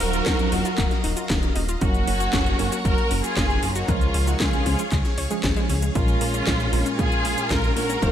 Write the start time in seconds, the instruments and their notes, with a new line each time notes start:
Already playing: tine electric piano F#3 D#4 C5 F5, string machine F#3 D#5 F5 A#5, violin section F#4 A#4
0.00 analog synth bass D#1, synth arpeggio sound D#4, open hi-hat
0.13 synth arpeggio sound F4, closed hi-hat, cabasa
0.26 analog synth bass D#1, synth arpeggio sound A#3, kick, snare, clap, closed hi-hat, cabasa
0.39 closed hi-hat, cabasa
0.52 analog synth bass D#1, tine electric piano F#3 D#4 F4 A#4, synth arpeggio sound D#4, open hi-hat
0.65 synth arpeggio sound F4, closed hi-hat, cabasa
0.78 analog synth bass D#1, synth arpeggio sound A#3, kick, clap, closed hi-hat, cabasa
0.91 snare, closed hi-hat, cabasa
1.04 analog synth bass D#1, synth arpeggio sound D#4, open hi-hat
1.17 synth arpeggio sound F4, closed hi-hat, cabasa
1.30 analog synth bass D#1, synth arpeggio sound A#3, kick, snare, clap, closed hi-hat, cabasa
1.43 closed hi-hat, cabasa
1.56 analog synth bass D#1, synth arpeggio sound D#4, open hi-hat
1.69 synth arpeggio sound F4, closed hi-hat, cabasa
1.81 analog synth bass F#1, tine electric piano F#3 A#3 C#4 A#4, synth arpeggio sound A#3, violin section C#4 F#4, string machine A#4 C#5 A#5 C#6, kick, closed hi-hat, cabasa
1.94 closed hi-hat, cabasa
2.07 analog synth bass F#1, synth arpeggio sound C#4, open hi-hat
2.20 synth arpeggio sound F#4, closed hi-hat, cabasa
2.33 analog synth bass F#1, synth arpeggio sound A#3, kick, snare, clap, closed hi-hat, cabasa
2.46 closed hi-hat, cabasa
2.59 analog synth bass F#1, tine electric piano F#3 A#3 C#4 A#4, synth arpeggio sound C#4, open hi-hat
2.72 synth arpeggio sound F#4, closed hi-hat, cabasa
2.85 analog synth bass F#1, synth arpeggio sound A#3, violin section F#4 A#4, kick, closed hi-hat, cabasa
2.98 closed hi-hat, cabasa
3.11 analog synth bass F#1, synth arpeggio sound C#4, open hi-hat
3.24 violin section F4 G#4, synth arpeggio sound F#4, closed hi-hat, cabasa
3.37 analog synth bass F#1, synth arpeggio sound A#3, kick, snare, clap, closed hi-hat, cabasa
3.50 cabasa
3.63 analog synth bass F#1, synth arpeggio sound C#4, open hi-hat
3.75 violin section D#4 F#4, synth arpeggio sound F#4, closed hi-hat, cabasa
3.88 analog synth bass C#2, tine electric piano F3 G#3 C#4 A#4, synth arpeggio sound G#3, violin section C#4 F4, string machine G#4 F5 C#6, kick, closed hi-hat, cabasa
4.01 closed hi-hat, cabasa
4.14 analog synth bass C#2, synth arpeggio sound C#4, open hi-hat
4.27 violin section D#4 F#4, synth arpeggio sound F4, closed hi-hat, cabasa
4.40 analog synth bass C#2, synth arpeggio sound G#3, violin section F4 G#4, kick, snare, clap, closed hi-hat, cabasa
4.53 closed hi-hat, cabasa
4.66 analog synth bass C#2, tine electric piano F3 G#3 C#4 G#4, synth arpeggio sound C#4, open hi-hat
4.79 synth arpeggio sound F4, closed hi-hat, cabasa
4.92 analog synth bass C#2, synth arpeggio sound G#3, kick, clap, closed hi-hat, cabasa
5.05 snare, closed hi-hat, cabasa
5.18 analog synth bass C#2, synth arpeggio sound C#5, open hi-hat
5.31 tine electric piano F3 G#3 C#4 G#4, synth arpeggio sound G#3, closed hi-hat, cabasa
5.44 analog synth bass G#1, synth arpeggio sound C#4, kick, snare, clap, closed hi-hat, cabasa
5.56 synth arpeggio sound G#3, closed hi-hat, cabasa
5.69 analog synth bass C#2, synth arpeggio sound C#4, open hi-hat
5.82 synth arpeggio sound G#3, closed hi-hat, cabasa
5.95 analog synth bass A#1, tine electric piano A#2 G#3 C#4 F4 A#4, synth arpeggio sound G#3, violin section C#4 F4, string machine C#5 A#5, kick, closed hi-hat, cabasa
6.08 closed hi-hat, cabasa
6.21 analog synth bass A#1, synth arpeggio sound A#3, open hi-hat
6.34 synth arpeggio sound C#4, closed hi-hat, cabasa
6.47 analog synth bass A#1, synth arpeggio sound G#3, kick, snare, clap, closed hi-hat, cabasa
6.60 closed hi-hat, cabasa
6.73 analog synth bass A#1, tine electric piano A#2 G#3 C#4 F4 A#4, synth arpeggio sound A#3, open hi-hat
6.86 synth arpeggio sound C#4, closed hi-hat, cabasa
6.99 analog synth bass A#1, synth arpeggio sound G#3, violin section F4 G#4, kick, closed hi-hat, cabasa
7.12 closed hi-hat, cabasa
7.25 analog synth bass A#1, synth arpeggio sound A#3, open hi-hat
7.38 synth arpeggio sound C#4, closed hi-hat, cabasa
7.50 analog synth bass A#1, synth arpeggio sound G#3, violin section F4 A#4, kick, snare, clap, closed hi-hat, cabasa
7.64 cabasa
7.76 analog synth bass A#1, synth arpeggio sound A#3, violin section F#4 A#4, open hi-hat
7.89 synth arpeggio sound C#4, closed hi-hat, cabasa
8.02 analog synth bass D#1, string machine F#3 D#5, tine electric piano F#3 D#4 C5 F5, synth arpeggio sound A#3, kick, closed hi-hat, cabasa